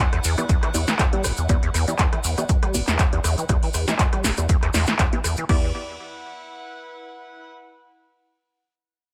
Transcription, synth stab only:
0, 0, Header, 1, 2, 480
1, 0, Start_track
1, 0, Key_signature, 1, "minor"
1, 0, Tempo, 500000
1, 1432, Time_signature, 4, 2, 24, 8
1, 8766, End_track
2, 0, Start_track
2, 0, Title_t, "Synth stab"
2, 0, Program_c, 0, 62
2, 363, Note_on_c, 0, 59, 95
2, 363, Note_on_c, 0, 64, 86
2, 364, Note_on_c, 0, 67, 87
2, 364, Note_on_c, 0, 74, 105
2, 445, Note_off_c, 0, 59, 0
2, 445, Note_off_c, 0, 64, 0
2, 445, Note_off_c, 0, 67, 0
2, 445, Note_off_c, 0, 74, 0
2, 713, Note_on_c, 0, 59, 78
2, 713, Note_on_c, 0, 64, 73
2, 713, Note_on_c, 0, 67, 74
2, 713, Note_on_c, 0, 74, 85
2, 810, Note_off_c, 0, 59, 0
2, 810, Note_off_c, 0, 64, 0
2, 810, Note_off_c, 0, 67, 0
2, 810, Note_off_c, 0, 74, 0
2, 1083, Note_on_c, 0, 59, 82
2, 1083, Note_on_c, 0, 64, 77
2, 1083, Note_on_c, 0, 67, 73
2, 1083, Note_on_c, 0, 74, 90
2, 1406, Note_off_c, 0, 59, 0
2, 1406, Note_off_c, 0, 64, 0
2, 1406, Note_off_c, 0, 67, 0
2, 1406, Note_off_c, 0, 74, 0
2, 1433, Note_on_c, 0, 59, 88
2, 1433, Note_on_c, 0, 64, 82
2, 1433, Note_on_c, 0, 67, 86
2, 1433, Note_on_c, 0, 74, 102
2, 1584, Note_off_c, 0, 64, 0
2, 1584, Note_off_c, 0, 67, 0
2, 1584, Note_off_c, 0, 74, 0
2, 1585, Note_off_c, 0, 59, 0
2, 1803, Note_on_c, 0, 59, 89
2, 1803, Note_on_c, 0, 64, 79
2, 1803, Note_on_c, 0, 67, 79
2, 1803, Note_on_c, 0, 74, 96
2, 1885, Note_off_c, 0, 59, 0
2, 1885, Note_off_c, 0, 64, 0
2, 1885, Note_off_c, 0, 67, 0
2, 1885, Note_off_c, 0, 74, 0
2, 2282, Note_on_c, 0, 59, 94
2, 2282, Note_on_c, 0, 74, 104
2, 2283, Note_on_c, 0, 64, 86
2, 2283, Note_on_c, 0, 67, 89
2, 2365, Note_off_c, 0, 59, 0
2, 2365, Note_off_c, 0, 64, 0
2, 2365, Note_off_c, 0, 67, 0
2, 2365, Note_off_c, 0, 74, 0
2, 2632, Note_on_c, 0, 67, 71
2, 2633, Note_on_c, 0, 59, 78
2, 2633, Note_on_c, 0, 64, 70
2, 2633, Note_on_c, 0, 74, 86
2, 2730, Note_off_c, 0, 59, 0
2, 2730, Note_off_c, 0, 64, 0
2, 2730, Note_off_c, 0, 67, 0
2, 2730, Note_off_c, 0, 74, 0
2, 3003, Note_on_c, 0, 59, 84
2, 3003, Note_on_c, 0, 64, 75
2, 3003, Note_on_c, 0, 67, 76
2, 3003, Note_on_c, 0, 74, 93
2, 3326, Note_off_c, 0, 59, 0
2, 3326, Note_off_c, 0, 64, 0
2, 3326, Note_off_c, 0, 67, 0
2, 3326, Note_off_c, 0, 74, 0
2, 3353, Note_on_c, 0, 59, 93
2, 3353, Note_on_c, 0, 64, 80
2, 3353, Note_on_c, 0, 67, 82
2, 3353, Note_on_c, 0, 74, 98
2, 3504, Note_off_c, 0, 59, 0
2, 3504, Note_off_c, 0, 64, 0
2, 3504, Note_off_c, 0, 67, 0
2, 3504, Note_off_c, 0, 74, 0
2, 3723, Note_on_c, 0, 59, 86
2, 3723, Note_on_c, 0, 64, 79
2, 3723, Note_on_c, 0, 67, 78
2, 3723, Note_on_c, 0, 74, 93
2, 3805, Note_off_c, 0, 59, 0
2, 3805, Note_off_c, 0, 64, 0
2, 3805, Note_off_c, 0, 67, 0
2, 3805, Note_off_c, 0, 74, 0
2, 4202, Note_on_c, 0, 64, 87
2, 4203, Note_on_c, 0, 59, 95
2, 4203, Note_on_c, 0, 67, 86
2, 4203, Note_on_c, 0, 74, 105
2, 4285, Note_off_c, 0, 59, 0
2, 4285, Note_off_c, 0, 64, 0
2, 4285, Note_off_c, 0, 67, 0
2, 4285, Note_off_c, 0, 74, 0
2, 4552, Note_on_c, 0, 59, 94
2, 4552, Note_on_c, 0, 64, 86
2, 4553, Note_on_c, 0, 67, 84
2, 4553, Note_on_c, 0, 74, 103
2, 4650, Note_off_c, 0, 59, 0
2, 4650, Note_off_c, 0, 64, 0
2, 4650, Note_off_c, 0, 67, 0
2, 4650, Note_off_c, 0, 74, 0
2, 4922, Note_on_c, 0, 59, 90
2, 4922, Note_on_c, 0, 64, 79
2, 4922, Note_on_c, 0, 76, 94
2, 4923, Note_on_c, 0, 67, 79
2, 5005, Note_off_c, 0, 59, 0
2, 5005, Note_off_c, 0, 64, 0
2, 5005, Note_off_c, 0, 67, 0
2, 5005, Note_off_c, 0, 76, 0
2, 5272, Note_on_c, 0, 59, 82
2, 5272, Note_on_c, 0, 64, 76
2, 5272, Note_on_c, 0, 67, 78
2, 5272, Note_on_c, 0, 74, 92
2, 5454, Note_off_c, 0, 64, 0
2, 5454, Note_off_c, 0, 67, 0
2, 5454, Note_off_c, 0, 74, 0
2, 5455, Note_off_c, 0, 59, 0
2, 8766, End_track
0, 0, End_of_file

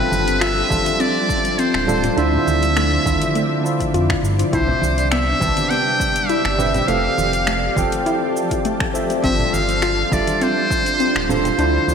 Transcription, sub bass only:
0, 0, Header, 1, 2, 480
1, 0, Start_track
1, 0, Tempo, 588235
1, 1777, Time_signature, 4, 2, 24, 8
1, 9746, End_track
2, 0, Start_track
2, 0, Title_t, "Sub bass"
2, 0, Program_c, 0, 38
2, 93, Note_on_c, 0, 31, 86
2, 514, Note_off_c, 0, 31, 0
2, 575, Note_on_c, 0, 31, 93
2, 661, Note_off_c, 0, 31, 0
2, 1422, Note_on_c, 0, 26, 103
2, 1715, Note_off_c, 0, 26, 0
2, 1773, Note_on_c, 0, 38, 102
2, 1939, Note_off_c, 0, 38, 0
2, 2017, Note_on_c, 0, 38, 76
2, 2436, Note_off_c, 0, 38, 0
2, 2496, Note_on_c, 0, 38, 94
2, 2581, Note_off_c, 0, 38, 0
2, 3215, Note_on_c, 0, 41, 90
2, 3380, Note_off_c, 0, 41, 0
2, 3454, Note_on_c, 0, 43, 105
2, 3620, Note_off_c, 0, 43, 0
2, 3696, Note_on_c, 0, 36, 95
2, 3861, Note_off_c, 0, 36, 0
2, 3937, Note_on_c, 0, 36, 77
2, 4356, Note_off_c, 0, 36, 0
2, 4416, Note_on_c, 0, 36, 98
2, 4501, Note_off_c, 0, 36, 0
2, 5263, Note_on_c, 0, 31, 102
2, 5555, Note_off_c, 0, 31, 0
2, 5616, Note_on_c, 0, 29, 104
2, 5781, Note_off_c, 0, 29, 0
2, 5856, Note_on_c, 0, 29, 81
2, 6276, Note_off_c, 0, 29, 0
2, 6338, Note_on_c, 0, 29, 91
2, 6422, Note_off_c, 0, 29, 0
2, 7538, Note_on_c, 0, 31, 99
2, 7702, Note_off_c, 0, 31, 0
2, 7775, Note_on_c, 0, 31, 79
2, 8196, Note_off_c, 0, 31, 0
2, 8256, Note_on_c, 0, 31, 101
2, 8341, Note_off_c, 0, 31, 0
2, 9102, Note_on_c, 0, 26, 101
2, 9395, Note_off_c, 0, 26, 0
2, 9452, Note_on_c, 0, 38, 99
2, 9619, Note_off_c, 0, 38, 0
2, 9692, Note_on_c, 0, 38, 82
2, 9746, Note_off_c, 0, 38, 0
2, 9746, End_track
0, 0, End_of_file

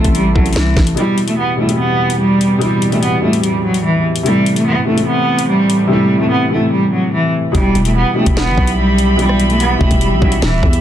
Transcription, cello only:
0, 0, Header, 1, 2, 480
1, 0, Start_track
1, 0, Key_signature, 1, "minor"
1, 0, Tempo, 410959
1, 1134, Time_signature, 4, 2, 24, 8
1, 12625, End_track
2, 0, Start_track
2, 0, Title_t, "Cello"
2, 0, Program_c, 0, 42
2, 0, Note_on_c, 0, 57, 82
2, 139, Note_off_c, 0, 57, 0
2, 177, Note_on_c, 0, 55, 84
2, 382, Note_off_c, 0, 55, 0
2, 419, Note_on_c, 0, 54, 75
2, 623, Note_off_c, 0, 54, 0
2, 651, Note_on_c, 0, 52, 81
2, 858, Note_off_c, 0, 52, 0
2, 1136, Note_on_c, 0, 55, 98
2, 1474, Note_off_c, 0, 55, 0
2, 1493, Note_on_c, 0, 57, 75
2, 1596, Note_off_c, 0, 57, 0
2, 1614, Note_on_c, 0, 59, 78
2, 1820, Note_off_c, 0, 59, 0
2, 1865, Note_on_c, 0, 57, 68
2, 2066, Note_off_c, 0, 57, 0
2, 2092, Note_on_c, 0, 59, 84
2, 2544, Note_off_c, 0, 59, 0
2, 2569, Note_on_c, 0, 55, 78
2, 3023, Note_off_c, 0, 55, 0
2, 3056, Note_on_c, 0, 55, 92
2, 3394, Note_off_c, 0, 55, 0
2, 3417, Note_on_c, 0, 57, 73
2, 3519, Note_off_c, 0, 57, 0
2, 3535, Note_on_c, 0, 59, 78
2, 3741, Note_off_c, 0, 59, 0
2, 3775, Note_on_c, 0, 57, 72
2, 3981, Note_off_c, 0, 57, 0
2, 4013, Note_on_c, 0, 55, 72
2, 4219, Note_off_c, 0, 55, 0
2, 4266, Note_on_c, 0, 54, 69
2, 4467, Note_off_c, 0, 54, 0
2, 4491, Note_on_c, 0, 52, 86
2, 4698, Note_off_c, 0, 52, 0
2, 4967, Note_on_c, 0, 55, 97
2, 5309, Note_off_c, 0, 55, 0
2, 5335, Note_on_c, 0, 57, 83
2, 5438, Note_off_c, 0, 57, 0
2, 5449, Note_on_c, 0, 59, 81
2, 5657, Note_off_c, 0, 59, 0
2, 5694, Note_on_c, 0, 57, 70
2, 5900, Note_off_c, 0, 57, 0
2, 5927, Note_on_c, 0, 59, 81
2, 6382, Note_off_c, 0, 59, 0
2, 6406, Note_on_c, 0, 55, 81
2, 6861, Note_off_c, 0, 55, 0
2, 6893, Note_on_c, 0, 55, 83
2, 7232, Note_off_c, 0, 55, 0
2, 7254, Note_on_c, 0, 57, 81
2, 7357, Note_off_c, 0, 57, 0
2, 7371, Note_on_c, 0, 59, 70
2, 7579, Note_off_c, 0, 59, 0
2, 7613, Note_on_c, 0, 57, 76
2, 7820, Note_off_c, 0, 57, 0
2, 7852, Note_on_c, 0, 55, 74
2, 8059, Note_off_c, 0, 55, 0
2, 8090, Note_on_c, 0, 54, 66
2, 8298, Note_off_c, 0, 54, 0
2, 8327, Note_on_c, 0, 52, 83
2, 8536, Note_off_c, 0, 52, 0
2, 8816, Note_on_c, 0, 55, 100
2, 9154, Note_off_c, 0, 55, 0
2, 9172, Note_on_c, 0, 57, 80
2, 9276, Note_off_c, 0, 57, 0
2, 9294, Note_on_c, 0, 59, 82
2, 9500, Note_off_c, 0, 59, 0
2, 9545, Note_on_c, 0, 57, 70
2, 9746, Note_off_c, 0, 57, 0
2, 9772, Note_on_c, 0, 59, 82
2, 10224, Note_off_c, 0, 59, 0
2, 10248, Note_on_c, 0, 55, 82
2, 10702, Note_off_c, 0, 55, 0
2, 10736, Note_on_c, 0, 55, 99
2, 11074, Note_off_c, 0, 55, 0
2, 11097, Note_on_c, 0, 57, 76
2, 11199, Note_off_c, 0, 57, 0
2, 11216, Note_on_c, 0, 59, 84
2, 11421, Note_off_c, 0, 59, 0
2, 11455, Note_on_c, 0, 57, 74
2, 11661, Note_off_c, 0, 57, 0
2, 11692, Note_on_c, 0, 55, 73
2, 11899, Note_off_c, 0, 55, 0
2, 11946, Note_on_c, 0, 54, 71
2, 12147, Note_off_c, 0, 54, 0
2, 12171, Note_on_c, 0, 52, 89
2, 12379, Note_off_c, 0, 52, 0
2, 12625, End_track
0, 0, End_of_file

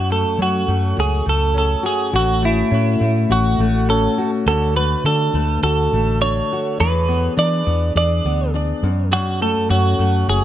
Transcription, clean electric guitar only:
0, 0, Header, 1, 2, 480
1, 0, Start_track
1, 0, Key_signature, 3, "minor"
1, 0, Tempo, 581395
1, 1767, Time_signature, 4, 2, 24, 8
1, 8622, End_track
2, 0, Start_track
2, 0, Title_t, "Clean electric guitar"
2, 0, Program_c, 0, 27
2, 100, Note_on_c, 0, 69, 74
2, 340, Note_off_c, 0, 69, 0
2, 348, Note_on_c, 0, 66, 68
2, 821, Note_off_c, 0, 66, 0
2, 825, Note_on_c, 0, 68, 79
2, 1039, Note_off_c, 0, 68, 0
2, 1068, Note_on_c, 0, 69, 83
2, 1294, Note_off_c, 0, 69, 0
2, 1304, Note_on_c, 0, 69, 72
2, 1533, Note_off_c, 0, 69, 0
2, 1536, Note_on_c, 0, 68, 66
2, 1778, Note_off_c, 0, 68, 0
2, 1781, Note_on_c, 0, 66, 85
2, 2021, Note_off_c, 0, 66, 0
2, 2025, Note_on_c, 0, 64, 79
2, 2741, Note_on_c, 0, 66, 81
2, 2757, Note_off_c, 0, 64, 0
2, 3215, Note_off_c, 0, 66, 0
2, 3218, Note_on_c, 0, 69, 76
2, 3548, Note_off_c, 0, 69, 0
2, 3696, Note_on_c, 0, 69, 85
2, 3931, Note_off_c, 0, 69, 0
2, 3934, Note_on_c, 0, 71, 91
2, 4154, Note_off_c, 0, 71, 0
2, 4178, Note_on_c, 0, 69, 87
2, 4619, Note_off_c, 0, 69, 0
2, 4652, Note_on_c, 0, 69, 82
2, 5129, Note_off_c, 0, 69, 0
2, 5132, Note_on_c, 0, 73, 89
2, 5614, Note_off_c, 0, 73, 0
2, 5617, Note_on_c, 0, 71, 95
2, 6059, Note_off_c, 0, 71, 0
2, 6099, Note_on_c, 0, 74, 87
2, 6539, Note_off_c, 0, 74, 0
2, 6583, Note_on_c, 0, 74, 84
2, 7021, Note_off_c, 0, 74, 0
2, 7537, Note_on_c, 0, 66, 94
2, 7776, Note_off_c, 0, 66, 0
2, 7779, Note_on_c, 0, 69, 95
2, 8009, Note_off_c, 0, 69, 0
2, 8013, Note_on_c, 0, 66, 91
2, 8496, Note_off_c, 0, 66, 0
2, 8499, Note_on_c, 0, 68, 88
2, 8622, Note_off_c, 0, 68, 0
2, 8622, End_track
0, 0, End_of_file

